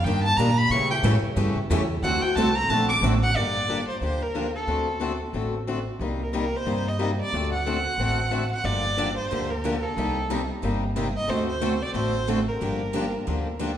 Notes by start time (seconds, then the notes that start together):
0.04 G2 D#3 G3 A#3 D4 G4 G5
0.24 A5
0.37 A#2 D#3 G3 A#3 D4 G4 A#5
0.58 B5
0.70 C#3 E3 G3 A3 C#4 E4 G4 A4 C#5 C#6
0.90 A3 C#4 G4 G5
1.03 A2 C#3 E3 G3 A3 C#4 E4 G4 A4 C#5
1.22 muted upright bass stroke
1.36 G2 C#3 E3 G3 A3 C#4 E4 G4 A4 C#5
1.55 muted upright bass stroke
1.70 E2 C#3 E3 G3 A3 C#4 E4 G4 A4 C#5
2.02 D2 D3 A3 C4 F#4 A4 F#5
2.22 C4 F#4 A4 G5, muted upright bass stroke
2.35 C2 D3 A3 C4 F#4 A4 A5
2.55 A#5
2.68 A#1 D3 A3 C4 F#4 A4 A5
2.89 D6
3.01 A1 D3 A3 C4 F#4 A4
3.23 F#5
3.34 G1 D3 F3 A#3 D4 G4 D5
3.68 D3 F3 A#3 D4 G4
3.88 C5
4.01 D2 D3 F3 A#3 D4 G4 C5
4.23 A#4
4.35 D3 F3 A#3 D4 G4
4.55 A4
4.67 D2 D3 A3 C4 F#4 A4
5.00 D3 A3 C4 F#4 A4
5.33 A1 D3 A3 C4 F#4 A4
5.67 D3 A3 C4 F#4 A4
5.99 C2 C3 G3 A#3 D#4 G4
6.23 A#4
6.33 C3 G3 A#3 D#4 G4 A#4
6.56 C5
6.65 G2 C3 G3 A#3 D#4 G4
6.88 D#5
6.99 C3 G3 A#3 D#4 G4 D#5
7.20 D5
7.32 D2 D3 A3 C4 F#4 A4
7.54 F#5
7.66 D3 A3 C4 F#4 A4
7.97 A1 D3 A3 C4 F#4 A4
8.31 D3 A3 C4 F#4 A4
8.53 F#5
8.64 G1 D3 F3 A#3 D4 G4 D5
8.97 D3 F3 A#3 D4 G4
9.17 C5
9.31 D2 D3 F3 A#3 D4 G4
9.50 A#4
9.64 D3 F3 A#3 D4 G4
9.83 A4
9.97 C2 C3 G3 A#3 D#4 G4
10.30 C3 G3 A#3 D#4 G4
10.62 G1 C3 G3 A#3 D#4 G4
10.96 C3 G3 A#3 D#4 G4
11.17 D#5
11.28 D2 D3 A3 C4 F#4 A4 C5
11.49 C5
11.61 D3 A3 C4 F#4 A4
11.82 D5
11.94 A1 D3 A3 C4 F#4 A4 C5
12.28 D3 A3 C4 F#4 A4
12.48 A#4
12.61 G1 D3 F3 A#3 D4 G4
12.94 D3 F3 A#3 D4 G4
13.27 D2 D3 F3 A#3 D4 G4
13.60 D3 F3 A#3 D4 G4